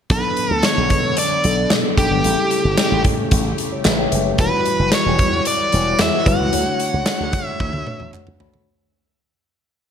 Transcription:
0.10 B1 D3 F#3 B3 D4 A4 B4, kick, closed hi-hat
0.37 closed hi-hat
0.51 D2
0.55 A4
0.63 C#5, snare, clap, closed hi-hat
0.78 B1
0.90 B2, kick, closed hi-hat
1.17 D5, closed hi-hat
1.44 B1 F#3 B3 D4 A4, closed hi-hat
1.70 B2, snare, clap, closed hi-hat
1.97 B1 F#3 B3 D4 G4 A4, kick, closed hi-hat
2.11 G1
2.24 A1 C#3 G3 A3 C4 E4 G4 A4, closed hi-hat
2.51 closed hi-hat
2.65 G1
2.78 snare, clap, closed hi-hat
2.92 A1
3.04 A2, kick, closed hi-hat
3.31 A1, kick, closed hi-hat
3.58 closed hi-hat
3.72 G4 C#5
3.85 A1 B4 E5, snare, clap, closed hi-hat
3.99 C#5 G5
4.12 F#1 B4 E5, closed hi-hat
4.26 G4 C#5
4.38 E1 E3 G3 E4 F#4 B4, kick, closed hi-hat
4.66 closed hi-hat
4.79 F#1
4.92 C#5, snare, clap, closed hi-hat
5.06 E1
5.19 E2, kick, closed hi-hat
5.45 D5, closed hi-hat
5.72 E1 G3 E4 F#4 C#5, closed hi-hat
5.99 E2 E5, snare, clap, closed hi-hat
6.26 G1 G3 E4 F#4 B4 F#5, kick, closed hi-hat
6.40 C#2
6.53 D2 D3 A3 D4 E4 C#5, closed hi-hat
6.60 F#4
6.80 closed hi-hat
6.94 C#2
7.06 snare, clap, closed hi-hat
7.20 D2
7.33 D3, kick, closed hi-hat
7.48 E5
7.60 D2, kick, high tom
7.73 D2, high tom
7.87 A3 D4 F#4 C#5, mid tom
8.00 E2, mid tom
8.13 F#5, clap, mid tom
8.27 D2, mid tom
8.40 D3 A3 D4 F#4 C#5 B5, floor tom
8.54 floor tom

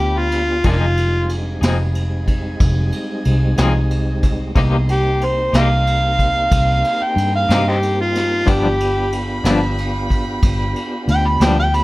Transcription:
Already playing: D2 B3 D4 F4 G4 F5 G5 B5
0.19 F4
0.31 snare, ride
0.64 F1 F3 G3 G#3 C4 D#4 G#4 D#5 G#5, kick, ride
0.68 A#3 D4 F4
0.97 ride
1.29 ride
1.61 F1 F3 C4 D#4 G#4, snare, ride
1.95 ride
2.28 kick, ride
2.60 F1, kick, ride
2.92 ride
3.25 C2, ride
3.57 C2 F3 C4 D#4 G#4, snare, ride
3.90 ride
4.23 kick, snare, ride
4.55 C2 C3 A#3 B3 D#4 E4 G4 G#4 A#5 C6, kick, ride
4.87 A#3 C4 D#4 G4, ride
4.92 G4
5.21 C5, ride
5.53 C2 C3 A#3 D#4 G4 F5, snare, ride
5.87 ride
6.19 kick, ride
6.51 C2, kick, ride
6.84 ride
7.03 G5
7.16 G2, ride
7.36 F5
7.49 G2 C3 A#3 D#4 G4, snare, ride
7.68 C4 D#4 G4
7.83 ride
8.01 F4
8.15 snare, ride
8.46 G1 G2 F3 B3 D4 F4 F5 G5 B5, kick, ride
8.50 D4 G4
8.80 ride
9.12 ride
9.44 G1 G2 F3 B3 D4, snare, ride
9.78 ride
10.10 kick, ride
10.42 G1, kick, ride
10.76 ride
11.08 D2 G5, ride
11.27 B5
11.40 D2 G2 F3 B3 D4 G5, snare, ride
11.59 G5
11.74 B5, ride

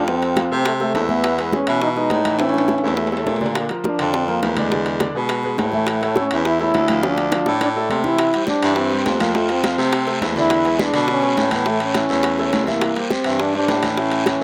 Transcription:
Already playing: F2
0.07 F3 C4 F4 F5, high bongo, high conga
0.22 high bongo, high conga, high timbale
0.36 F3 F4 F5, high bongo, high conga, high timbale, low timbale
0.51 C3 A3 A4 C5, high conga
0.65 A3, high bongo, high conga, high timbale
0.80 A3 A4 C5, high bongo, high conga
0.94 E2, high bongo, low bongo, high conga, high timbale, low timbale
1.09 E3 B3 E4 E5, high bongo, high conga
1.24 high bongo, high conga, high timbale
1.38 G#3 G#4 B4, high bongo, high conga, high timbale
1.52 G#3 C#4 G#4 B4, high bongo, high conga, low timbale
1.67 B2 E3 E4 E5, high timbale
1.82 D#4, high bongo, high conga
1.96 G#3 D#4 G#4 B4, high bongo, high conga
2.10 A2, high bongo, low bongo, high conga, high timbale, low timbale
2.25 E3 E4 E5, high bongo, high conga, high timbale
2.39 E3 C#4 E4 E5, high bongo, high conga, high timbale
2.49 high timbale
2.54 high bongo, high conga
2.58 high timbale
2.68 E3 E4 E5, high bongo, high conga, high timbale
2.78 high timbale
2.83 E2 A3 A4 C#5, high conga
2.88 low timbale
2.97 A3, high bongo, high conga
3.07 low timbale
3.12 A3 A4 C#5, high bongo, high conga
3.17 low timbale
3.26 A#2, high bongo, low bongo, high conga, low timbale
3.36 low timbale
3.41 D3 A#3 D4 D5, high bongo, high conga
3.46 low timbale
3.55 high bongo, high conga, high timbale
3.69 F3 F4 A#4, high bongo, high conga, high timbale
3.84 F3 D4 F4 A#4, high bongo, high conga, low timbale
3.99 F2 D3 D4 D5, high timbale
4.13 C4, high bongo, high conga
4.28 F3 A#3 F4 A#4, high bongo, high conga
4.42 E2, high bongo, low bongo, high conga, high timbale, low timbale
4.57 D3 G#3 D4 D5, high bongo, high conga, high timbale
4.71 D3 D4 D5, high bongo, high conga
4.86 high bongo, high conga, high timbale
5.00 D3 D4 D5, high bongo, high conga, high timbale, low timbale
5.15 B2 G#3 G#4 B4, high conga
5.29 high bongo, high conga, high timbale
5.43 G#3 G#4 B4, high bongo, high conga
5.58 A2, high bongo, low bongo, high conga, high timbale, low timbale
5.72 E3 A3 E4 E5, high bongo, high conga
5.87 high bongo, high conga, high timbale
6.01 A3 A4 C#5, high bongo, high conga, high timbale
6.16 A3 C#4 A4 C#5, high bongo, high conga, low timbale
6.31 E2 E3 E4 E5, high timbale
6.45 E4, high bongo, high conga
6.59 A3 E4 A4 C#5, high bongo, high conga
6.74 D2, high bongo, low bongo, high conga, high timbale, low timbale
6.88 F3 F4 F5, high bongo, high conga, high timbale
7.03 F3 D4 F4 F5, high bongo, high conga
7.17 high bongo, high conga, high timbale
7.32 F3 F4 F5, low bongo, high conga, high timbale, low timbale
7.46 A2 A3 A4 D5, high bongo, high conga
7.61 D4, low bongo, high conga, high timbale
7.75 A3 A4 D5, high conga
7.90 C3, high conga, high timbale, low timbale
8.04 E3 E4 E5, low bongo, high conga
8.18 high bongo, high conga, high timbale, long guiro
8.33 G3 G4 C5, high bongo, high conga, high timbale
8.47 G3 D4 G4 C5, high bongo, high conga, low timbale, short guiro
8.62 G2 E3 E4 E5, high timbale, short guiro
8.76 C4, high bongo, high conga, long guiro
8.91 G3 G4 C5, high bongo, high conga
9.06 F2, high bongo, low bongo, high conga, high timbale, low timbale, short guiro
9.20 F3 A#3 F4 F5, high bongo, high conga, high timbale, short guiro
9.35 F3 A3 F4 F5, high bongo, high conga, long guiro
9.49 C4, high bongo, high conga, high timbale
9.64 F3 F4 F5, high bongo, high conga, high timbale, low timbale, short guiro
9.78 C3 A3 A4 C5, high conga, short guiro
9.92 high bongo, high conga, high timbale, long guiro
10.07 A3 A4 C5, high bongo, high conga
10.21 E2, high bongo, low bongo, high conga, high timbale, low timbale, short guiro
10.36 D3 D4 E4 D5, high bongo, high conga, short guiro
10.50 high bongo, high conga, high timbale, long guiro
10.64 G#3 G#4 B4, high bongo, high conga, high timbale
10.79 G#3 D4 G#4 B4, high bongo, high conga, low timbale, short guiro
10.93 B2 D3 D4 D5, high timbale, short guiro
11.08 C#4, high bongo, high conga, long guiro
11.22 G#3 G#4 B4, high bongo, high conga
11.37 A2, high bongo, low bongo, high conga, high timbale, low timbale, short guiro
11.51 E3 B3 E4 E5, high bongo, high conga, high timbale, short guiro
11.66 E3 A3 E4 E5, high bongo, high conga, long guiro
11.80 C#4, high bongo, high conga, high timbale
11.94 E3 E4 E5, high bongo, high conga, high timbale, low timbale, short guiro
12.09 E2 A3 A4 C#5, high conga, short guiro
12.23 high bongo, high conga, high timbale, long guiro
12.38 A3 A4 C#5, high bongo, high conga
12.53 C2, high bongo, low bongo, high conga, high timbale, low timbale, short guiro
12.67 E3 A#3 E4 E5, high bongo, high conga, short guiro
12.81 high bongo, high conga, high timbale, long guiro
12.96 G3 G4 C5, high bongo, high conga, high timbale
13.10 G3 C4 G4 C5, high bongo, high conga, low timbale, short guiro
13.24 G2 E3 E4 E5, high timbale, short guiro
13.40 D4, high bongo, high conga, long guiro
13.54 G3 D4 G4 C5, high bongo, high conga
13.68 A2, high bongo, low bongo, high conga, high timbale, low timbale, short guiro
13.83 E3 E4 E5, high bongo, high conga, high timbale, short guiro
13.91 D4
13.97 E3 C#4 E4 E5, high bongo, high conga, long guiro
14.11 high bongo, high conga, high timbale
14.26 E3 E4 E5, high bongo, high conga, high timbale, low timbale, short guiro

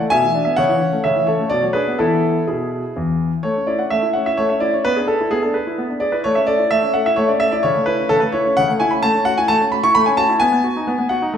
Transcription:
0.00 A3
0.10 B2 E5 G#5
0.23 E3
0.35 D4
0.45 B3 E5
0.56 C#3 C#5 F#5
0.69 E3
0.80 C#4
0.93 A3
1.04 C#3 C#5 E5
1.16 E3
1.27 C#4 A4 C#5
1.39 A3
1.50 B2 D5
1.61 F#3 C#5
1.73 D4 G#4 B4
1.88 B3
1.99 E3 B3 E4 A4
2.47 B2 E4 G#4
2.96 E2
3.43 A3 C#5
3.56 C#4
3.67 E4 D5
3.79 C#4 F#5
3.90 A3 E5
4.03 E4
4.13 C#4 F#5
4.26 E4 E5
4.37 A3 C#5
4.49 C#4 E5
4.60 E4 D5
4.74 C#4 C#5
4.85 B3 B4
4.96 D4 G#4
5.07 G#4 A4
5.21 E4
5.31 B3 G#4
5.42 D4 A4
5.54 G#4 B4
5.67 E4
5.78 B3
5.90 D4
6.00 G#4 D5
6.12 E4 B4
6.24 A3 C#5
6.35 C#4 E5
6.47 A4 D5
6.59 E4
6.71 A3 E5
6.82 C#4
6.94 A4 F#5
7.06 E4 E5
7.16 A3 C#5
7.28 C#4 D5
7.40 A4 E5
7.52 E4 D5
7.63 C#3 C#5
7.76 A3
7.86 E4 B4
7.99 C#4
8.09 C#3 A4
8.20 A3 B4
8.32 E4 C#5
8.46 C#4
8.57 C#3 F#5
8.69 A3
8.80 E4 G#5
8.91 C#4 B5
9.03 A3 A5
9.15 C#4
9.25 F#4 F#5
9.38 E4 G#5
9.48 A3 A5
9.61 C#4
9.72 F#4 B5
9.84 E4 C#6
9.95 A3 B5
10.06 C#4 G#5
10.17 F#4 A5
10.30 E4
10.40 B3 G#5
10.52 B3
10.64 F#4
10.76 D#4
10.87 B3
10.99 B3
11.09 F#4 F#5
11.22 D#4
11.34 A3

